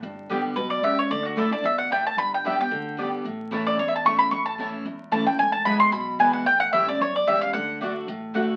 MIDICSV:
0, 0, Header, 1, 5, 480
1, 0, Start_track
1, 0, Key_signature, 2, "major"
1, 0, Tempo, 268216
1, 55, Time_signature, 4, 2, 24, 8
1, 15324, End_track
2, 0, Start_track
2, 0, Title_t, "Mandolin"
2, 0, Program_c, 0, 25
2, 1001, Note_on_c, 0, 71, 80
2, 1248, Note_off_c, 0, 71, 0
2, 1256, Note_on_c, 0, 74, 80
2, 1481, Note_off_c, 0, 74, 0
2, 1499, Note_on_c, 0, 76, 86
2, 1745, Note_off_c, 0, 76, 0
2, 1767, Note_on_c, 0, 73, 76
2, 1976, Note_off_c, 0, 73, 0
2, 1983, Note_on_c, 0, 74, 100
2, 2227, Note_off_c, 0, 74, 0
2, 2244, Note_on_c, 0, 66, 59
2, 2455, Note_off_c, 0, 66, 0
2, 2471, Note_on_c, 0, 69, 71
2, 2711, Note_off_c, 0, 69, 0
2, 2727, Note_on_c, 0, 74, 88
2, 2937, Note_off_c, 0, 74, 0
2, 2961, Note_on_c, 0, 76, 87
2, 3184, Note_off_c, 0, 76, 0
2, 3191, Note_on_c, 0, 78, 86
2, 3409, Note_off_c, 0, 78, 0
2, 3437, Note_on_c, 0, 79, 88
2, 3674, Note_off_c, 0, 79, 0
2, 3697, Note_on_c, 0, 81, 90
2, 3898, Note_off_c, 0, 81, 0
2, 3905, Note_on_c, 0, 83, 109
2, 4147, Note_off_c, 0, 83, 0
2, 4194, Note_on_c, 0, 79, 91
2, 4391, Note_off_c, 0, 79, 0
2, 4407, Note_on_c, 0, 76, 61
2, 4639, Note_off_c, 0, 76, 0
2, 4665, Note_on_c, 0, 79, 102
2, 5760, Note_off_c, 0, 79, 0
2, 6561, Note_on_c, 0, 74, 94
2, 6773, Note_off_c, 0, 74, 0
2, 6787, Note_on_c, 0, 73, 87
2, 6936, Note_off_c, 0, 73, 0
2, 6947, Note_on_c, 0, 76, 66
2, 7074, Note_off_c, 0, 76, 0
2, 7081, Note_on_c, 0, 81, 74
2, 7243, Note_off_c, 0, 81, 0
2, 7263, Note_on_c, 0, 85, 107
2, 7484, Note_off_c, 0, 85, 0
2, 7491, Note_on_c, 0, 83, 104
2, 7709, Note_off_c, 0, 83, 0
2, 7716, Note_on_c, 0, 85, 98
2, 7970, Note_off_c, 0, 85, 0
2, 7977, Note_on_c, 0, 81, 96
2, 8115, Note_off_c, 0, 81, 0
2, 9163, Note_on_c, 0, 81, 99
2, 9415, Note_off_c, 0, 81, 0
2, 9425, Note_on_c, 0, 79, 88
2, 9639, Note_off_c, 0, 79, 0
2, 9646, Note_on_c, 0, 80, 94
2, 9876, Note_off_c, 0, 80, 0
2, 9883, Note_on_c, 0, 81, 91
2, 10110, Note_off_c, 0, 81, 0
2, 10117, Note_on_c, 0, 83, 102
2, 10367, Note_off_c, 0, 83, 0
2, 10374, Note_on_c, 0, 84, 118
2, 10592, Note_off_c, 0, 84, 0
2, 10599, Note_on_c, 0, 83, 88
2, 11052, Note_off_c, 0, 83, 0
2, 11092, Note_on_c, 0, 80, 92
2, 11326, Note_off_c, 0, 80, 0
2, 11333, Note_on_c, 0, 78, 89
2, 11558, Note_off_c, 0, 78, 0
2, 11565, Note_on_c, 0, 79, 112
2, 11803, Note_off_c, 0, 79, 0
2, 11810, Note_on_c, 0, 78, 98
2, 12032, Note_off_c, 0, 78, 0
2, 12039, Note_on_c, 0, 76, 99
2, 12293, Note_off_c, 0, 76, 0
2, 12322, Note_on_c, 0, 74, 105
2, 12533, Note_off_c, 0, 74, 0
2, 12554, Note_on_c, 0, 73, 82
2, 12791, Note_off_c, 0, 73, 0
2, 12809, Note_on_c, 0, 74, 78
2, 13017, Note_off_c, 0, 74, 0
2, 13019, Note_on_c, 0, 76, 96
2, 13261, Note_off_c, 0, 76, 0
2, 13268, Note_on_c, 0, 77, 91
2, 13474, Note_off_c, 0, 77, 0
2, 13481, Note_on_c, 0, 78, 86
2, 13932, Note_off_c, 0, 78, 0
2, 15324, End_track
3, 0, Start_track
3, 0, Title_t, "Mandolin"
3, 0, Program_c, 1, 25
3, 528, Note_on_c, 1, 59, 93
3, 537, Note_on_c, 1, 67, 100
3, 544, Note_on_c, 1, 74, 94
3, 548, Note_on_c, 1, 79, 96
3, 703, Note_off_c, 1, 59, 0
3, 708, Note_off_c, 1, 67, 0
3, 711, Note_off_c, 1, 74, 0
3, 713, Note_off_c, 1, 79, 0
3, 1489, Note_on_c, 1, 59, 78
3, 1502, Note_on_c, 1, 67, 91
3, 1504, Note_on_c, 1, 74, 83
3, 1508, Note_on_c, 1, 79, 84
3, 1664, Note_off_c, 1, 59, 0
3, 1670, Note_off_c, 1, 67, 0
3, 1671, Note_off_c, 1, 74, 0
3, 1673, Note_off_c, 1, 79, 0
3, 2449, Note_on_c, 1, 57, 94
3, 2460, Note_on_c, 1, 64, 104
3, 2464, Note_on_c, 1, 74, 103
3, 2471, Note_on_c, 1, 81, 99
3, 2624, Note_off_c, 1, 57, 0
3, 2629, Note_off_c, 1, 64, 0
3, 2631, Note_off_c, 1, 74, 0
3, 2634, Note_off_c, 1, 81, 0
3, 3403, Note_on_c, 1, 57, 79
3, 3413, Note_on_c, 1, 64, 102
3, 3420, Note_on_c, 1, 74, 83
3, 3421, Note_on_c, 1, 81, 97
3, 3580, Note_off_c, 1, 57, 0
3, 3586, Note_off_c, 1, 64, 0
3, 3589, Note_off_c, 1, 74, 0
3, 3589, Note_off_c, 1, 81, 0
3, 4377, Note_on_c, 1, 59, 92
3, 4381, Note_on_c, 1, 67, 99
3, 4389, Note_on_c, 1, 74, 100
3, 4395, Note_on_c, 1, 79, 101
3, 4547, Note_off_c, 1, 59, 0
3, 4549, Note_off_c, 1, 67, 0
3, 4553, Note_off_c, 1, 74, 0
3, 4556, Note_off_c, 1, 79, 0
3, 5333, Note_on_c, 1, 59, 85
3, 5338, Note_on_c, 1, 67, 87
3, 5343, Note_on_c, 1, 74, 98
3, 5352, Note_on_c, 1, 79, 93
3, 5505, Note_off_c, 1, 59, 0
3, 5508, Note_off_c, 1, 67, 0
3, 5510, Note_off_c, 1, 74, 0
3, 5514, Note_off_c, 1, 79, 0
3, 6292, Note_on_c, 1, 57, 89
3, 6292, Note_on_c, 1, 64, 100
3, 6298, Note_on_c, 1, 73, 112
3, 6309, Note_on_c, 1, 81, 97
3, 6464, Note_off_c, 1, 57, 0
3, 6465, Note_off_c, 1, 64, 0
3, 6468, Note_off_c, 1, 73, 0
3, 6473, Note_off_c, 1, 81, 0
3, 7255, Note_on_c, 1, 57, 78
3, 7263, Note_on_c, 1, 64, 94
3, 7270, Note_on_c, 1, 73, 96
3, 7274, Note_on_c, 1, 81, 80
3, 7426, Note_off_c, 1, 57, 0
3, 7430, Note_off_c, 1, 64, 0
3, 7433, Note_off_c, 1, 73, 0
3, 7435, Note_off_c, 1, 81, 0
3, 8224, Note_on_c, 1, 57, 85
3, 8228, Note_on_c, 1, 64, 89
3, 8238, Note_on_c, 1, 73, 96
3, 8243, Note_on_c, 1, 81, 99
3, 8390, Note_off_c, 1, 57, 0
3, 8392, Note_off_c, 1, 64, 0
3, 8397, Note_off_c, 1, 73, 0
3, 8400, Note_off_c, 1, 81, 0
3, 9176, Note_on_c, 1, 57, 85
3, 9184, Note_on_c, 1, 64, 82
3, 9190, Note_on_c, 1, 73, 94
3, 9197, Note_on_c, 1, 81, 97
3, 9346, Note_off_c, 1, 57, 0
3, 9350, Note_off_c, 1, 64, 0
3, 9353, Note_off_c, 1, 73, 0
3, 9356, Note_off_c, 1, 81, 0
3, 10120, Note_on_c, 1, 59, 97
3, 10131, Note_on_c, 1, 64, 100
3, 10142, Note_on_c, 1, 71, 104
3, 10145, Note_on_c, 1, 80, 110
3, 10298, Note_off_c, 1, 59, 0
3, 10303, Note_off_c, 1, 64, 0
3, 10308, Note_off_c, 1, 71, 0
3, 10310, Note_off_c, 1, 80, 0
3, 11088, Note_on_c, 1, 59, 88
3, 11095, Note_on_c, 1, 64, 84
3, 11103, Note_on_c, 1, 71, 94
3, 11110, Note_on_c, 1, 80, 97
3, 11261, Note_off_c, 1, 59, 0
3, 11265, Note_off_c, 1, 64, 0
3, 11269, Note_off_c, 1, 71, 0
3, 11272, Note_off_c, 1, 80, 0
3, 12040, Note_on_c, 1, 57, 93
3, 12052, Note_on_c, 1, 64, 105
3, 12059, Note_on_c, 1, 73, 100
3, 12066, Note_on_c, 1, 79, 101
3, 12217, Note_off_c, 1, 57, 0
3, 12223, Note_off_c, 1, 64, 0
3, 12227, Note_off_c, 1, 73, 0
3, 12230, Note_off_c, 1, 79, 0
3, 13004, Note_on_c, 1, 57, 82
3, 13017, Note_on_c, 1, 64, 97
3, 13023, Note_on_c, 1, 73, 102
3, 13025, Note_on_c, 1, 79, 91
3, 13179, Note_off_c, 1, 57, 0
3, 13186, Note_off_c, 1, 64, 0
3, 13189, Note_off_c, 1, 73, 0
3, 13190, Note_off_c, 1, 79, 0
3, 13968, Note_on_c, 1, 57, 103
3, 13977, Note_on_c, 1, 66, 89
3, 13986, Note_on_c, 1, 74, 105
3, 13989, Note_on_c, 1, 78, 103
3, 14141, Note_off_c, 1, 57, 0
3, 14146, Note_off_c, 1, 66, 0
3, 14150, Note_off_c, 1, 74, 0
3, 14152, Note_off_c, 1, 78, 0
3, 14921, Note_on_c, 1, 57, 86
3, 14928, Note_on_c, 1, 66, 84
3, 14937, Note_on_c, 1, 74, 89
3, 14939, Note_on_c, 1, 78, 101
3, 15098, Note_off_c, 1, 57, 0
3, 15102, Note_off_c, 1, 66, 0
3, 15106, Note_off_c, 1, 74, 0
3, 15107, Note_off_c, 1, 78, 0
3, 15324, End_track
4, 0, Start_track
4, 0, Title_t, "Steel-string acoustic guitar"
4, 0, Program_c, 2, 25
4, 57, Note_on_c, 2, 43, 98
4, 527, Note_on_c, 2, 50, 88
4, 544, Note_on_c, 2, 55, 87
4, 560, Note_on_c, 2, 59, 94
4, 567, Note_on_c, 2, 67, 81
4, 971, Note_off_c, 2, 43, 0
4, 989, Note_off_c, 2, 50, 0
4, 997, Note_off_c, 2, 55, 0
4, 1005, Note_off_c, 2, 59, 0
4, 1009, Note_off_c, 2, 67, 0
4, 1011, Note_on_c, 2, 47, 96
4, 1471, Note_off_c, 2, 47, 0
4, 1488, Note_on_c, 2, 49, 95
4, 1949, Note_off_c, 2, 49, 0
4, 1975, Note_on_c, 2, 50, 88
4, 2410, Note_off_c, 2, 50, 0
4, 2431, Note_on_c, 2, 50, 82
4, 2447, Note_on_c, 2, 57, 93
4, 2464, Note_on_c, 2, 62, 91
4, 2479, Note_on_c, 2, 64, 95
4, 2678, Note_off_c, 2, 64, 0
4, 2688, Note_off_c, 2, 50, 0
4, 2696, Note_off_c, 2, 57, 0
4, 2699, Note_on_c, 2, 64, 68
4, 2705, Note_off_c, 2, 62, 0
4, 2733, Note_on_c, 2, 62, 51
4, 2921, Note_off_c, 2, 64, 0
4, 2930, Note_on_c, 2, 47, 98
4, 2938, Note_off_c, 2, 62, 0
4, 3390, Note_off_c, 2, 47, 0
4, 3435, Note_on_c, 2, 45, 91
4, 3883, Note_off_c, 2, 45, 0
4, 3902, Note_on_c, 2, 43, 88
4, 4382, Note_on_c, 2, 50, 93
4, 4394, Note_on_c, 2, 55, 88
4, 4410, Note_on_c, 2, 59, 91
4, 4424, Note_on_c, 2, 67, 100
4, 4607, Note_off_c, 2, 67, 0
4, 4623, Note_off_c, 2, 50, 0
4, 4629, Note_off_c, 2, 55, 0
4, 4629, Note_on_c, 2, 67, 64
4, 4637, Note_off_c, 2, 59, 0
4, 4665, Note_on_c, 2, 59, 54
4, 4813, Note_off_c, 2, 43, 0
4, 4845, Note_off_c, 2, 67, 0
4, 4852, Note_on_c, 2, 50, 103
4, 4864, Note_off_c, 2, 59, 0
4, 5295, Note_off_c, 2, 50, 0
4, 5316, Note_on_c, 2, 50, 78
4, 5339, Note_on_c, 2, 55, 88
4, 5351, Note_on_c, 2, 59, 93
4, 5361, Note_on_c, 2, 67, 93
4, 5783, Note_off_c, 2, 50, 0
4, 5794, Note_off_c, 2, 55, 0
4, 5800, Note_off_c, 2, 59, 0
4, 5805, Note_off_c, 2, 67, 0
4, 5822, Note_on_c, 2, 45, 89
4, 6279, Note_on_c, 2, 52, 89
4, 6300, Note_on_c, 2, 57, 89
4, 6314, Note_on_c, 2, 61, 100
4, 6329, Note_on_c, 2, 64, 99
4, 6733, Note_off_c, 2, 45, 0
4, 6744, Note_off_c, 2, 52, 0
4, 6754, Note_off_c, 2, 57, 0
4, 6762, Note_off_c, 2, 61, 0
4, 6769, Note_off_c, 2, 64, 0
4, 6788, Note_on_c, 2, 40, 96
4, 7245, Note_on_c, 2, 52, 88
4, 7263, Note_on_c, 2, 57, 87
4, 7274, Note_on_c, 2, 61, 89
4, 7288, Note_on_c, 2, 64, 95
4, 7696, Note_off_c, 2, 40, 0
4, 7707, Note_off_c, 2, 52, 0
4, 7716, Note_off_c, 2, 57, 0
4, 7721, Note_off_c, 2, 61, 0
4, 7728, Note_off_c, 2, 64, 0
4, 7737, Note_on_c, 2, 45, 93
4, 8200, Note_on_c, 2, 52, 91
4, 8208, Note_on_c, 2, 57, 85
4, 8221, Note_on_c, 2, 61, 93
4, 8237, Note_on_c, 2, 64, 94
4, 8650, Note_off_c, 2, 45, 0
4, 8664, Note_off_c, 2, 52, 0
4, 8668, Note_off_c, 2, 57, 0
4, 8675, Note_off_c, 2, 61, 0
4, 8682, Note_off_c, 2, 64, 0
4, 8688, Note_on_c, 2, 40, 91
4, 9154, Note_on_c, 2, 52, 89
4, 9165, Note_on_c, 2, 57, 88
4, 9183, Note_on_c, 2, 61, 89
4, 9192, Note_on_c, 2, 64, 84
4, 9388, Note_off_c, 2, 64, 0
4, 9408, Note_off_c, 2, 52, 0
4, 9409, Note_on_c, 2, 64, 54
4, 9414, Note_off_c, 2, 57, 0
4, 9423, Note_off_c, 2, 61, 0
4, 9447, Note_on_c, 2, 61, 47
4, 9606, Note_off_c, 2, 40, 0
4, 9635, Note_off_c, 2, 64, 0
4, 9647, Note_on_c, 2, 40, 93
4, 9654, Note_off_c, 2, 61, 0
4, 10117, Note_on_c, 2, 52, 89
4, 10124, Note_on_c, 2, 56, 96
4, 10144, Note_on_c, 2, 59, 97
4, 10155, Note_on_c, 2, 64, 94
4, 10565, Note_off_c, 2, 40, 0
4, 10582, Note_off_c, 2, 52, 0
4, 10586, Note_off_c, 2, 56, 0
4, 10594, Note_on_c, 2, 47, 104
4, 10596, Note_off_c, 2, 59, 0
4, 10601, Note_off_c, 2, 64, 0
4, 11077, Note_on_c, 2, 52, 100
4, 11089, Note_on_c, 2, 56, 95
4, 11101, Note_on_c, 2, 59, 91
4, 11115, Note_on_c, 2, 64, 92
4, 11518, Note_off_c, 2, 47, 0
4, 11542, Note_off_c, 2, 52, 0
4, 11548, Note_off_c, 2, 56, 0
4, 11554, Note_off_c, 2, 59, 0
4, 11561, Note_off_c, 2, 64, 0
4, 11575, Note_on_c, 2, 45, 91
4, 12037, Note_on_c, 2, 52, 91
4, 12052, Note_on_c, 2, 55, 89
4, 12061, Note_on_c, 2, 61, 94
4, 12074, Note_on_c, 2, 64, 94
4, 12274, Note_off_c, 2, 64, 0
4, 12290, Note_off_c, 2, 52, 0
4, 12295, Note_on_c, 2, 64, 72
4, 12297, Note_off_c, 2, 55, 0
4, 12301, Note_off_c, 2, 61, 0
4, 12336, Note_on_c, 2, 61, 51
4, 12488, Note_off_c, 2, 45, 0
4, 12517, Note_off_c, 2, 64, 0
4, 12537, Note_off_c, 2, 61, 0
4, 12539, Note_on_c, 2, 40, 99
4, 13010, Note_on_c, 2, 52, 93
4, 13023, Note_on_c, 2, 55, 90
4, 13032, Note_on_c, 2, 61, 82
4, 13044, Note_on_c, 2, 64, 96
4, 13450, Note_off_c, 2, 40, 0
4, 13468, Note_off_c, 2, 52, 0
4, 13475, Note_off_c, 2, 55, 0
4, 13479, Note_off_c, 2, 61, 0
4, 13485, Note_off_c, 2, 64, 0
4, 13498, Note_on_c, 2, 50, 90
4, 13950, Note_off_c, 2, 50, 0
4, 13972, Note_on_c, 2, 50, 77
4, 13983, Note_on_c, 2, 57, 89
4, 14004, Note_on_c, 2, 62, 84
4, 14011, Note_on_c, 2, 66, 94
4, 14430, Note_off_c, 2, 50, 0
4, 14435, Note_off_c, 2, 57, 0
4, 14445, Note_off_c, 2, 62, 0
4, 14449, Note_off_c, 2, 66, 0
4, 14462, Note_on_c, 2, 45, 103
4, 14928, Note_on_c, 2, 50, 81
4, 14940, Note_on_c, 2, 57, 84
4, 14949, Note_on_c, 2, 62, 82
4, 14963, Note_on_c, 2, 66, 91
4, 15324, Note_off_c, 2, 45, 0
4, 15324, Note_off_c, 2, 50, 0
4, 15324, Note_off_c, 2, 57, 0
4, 15324, Note_off_c, 2, 62, 0
4, 15324, Note_off_c, 2, 66, 0
4, 15324, End_track
5, 0, Start_track
5, 0, Title_t, "Upright bass"
5, 0, Program_c, 3, 32
5, 43, Note_on_c, 3, 31, 99
5, 696, Note_off_c, 3, 31, 0
5, 1009, Note_on_c, 3, 35, 101
5, 1420, Note_off_c, 3, 35, 0
5, 1479, Note_on_c, 3, 37, 81
5, 1894, Note_off_c, 3, 37, 0
5, 1970, Note_on_c, 3, 38, 104
5, 2620, Note_off_c, 3, 38, 0
5, 2920, Note_on_c, 3, 33, 92
5, 3573, Note_off_c, 3, 33, 0
5, 3884, Note_on_c, 3, 31, 106
5, 4536, Note_off_c, 3, 31, 0
5, 4846, Note_on_c, 3, 38, 96
5, 5497, Note_off_c, 3, 38, 0
5, 5809, Note_on_c, 3, 33, 99
5, 6459, Note_off_c, 3, 33, 0
5, 6760, Note_on_c, 3, 28, 101
5, 7413, Note_off_c, 3, 28, 0
5, 7719, Note_on_c, 3, 33, 108
5, 8372, Note_off_c, 3, 33, 0
5, 8682, Note_on_c, 3, 28, 90
5, 9334, Note_off_c, 3, 28, 0
5, 9658, Note_on_c, 3, 28, 103
5, 10305, Note_off_c, 3, 28, 0
5, 10612, Note_on_c, 3, 35, 94
5, 11261, Note_off_c, 3, 35, 0
5, 11559, Note_on_c, 3, 33, 104
5, 11887, Note_off_c, 3, 33, 0
5, 12056, Note_on_c, 3, 33, 98
5, 12462, Note_off_c, 3, 33, 0
5, 12539, Note_on_c, 3, 35, 91
5, 12944, Note_off_c, 3, 35, 0
5, 13027, Note_on_c, 3, 37, 90
5, 13428, Note_off_c, 3, 37, 0
5, 13500, Note_on_c, 3, 38, 111
5, 14146, Note_off_c, 3, 38, 0
5, 14444, Note_on_c, 3, 33, 96
5, 15096, Note_off_c, 3, 33, 0
5, 15324, End_track
0, 0, End_of_file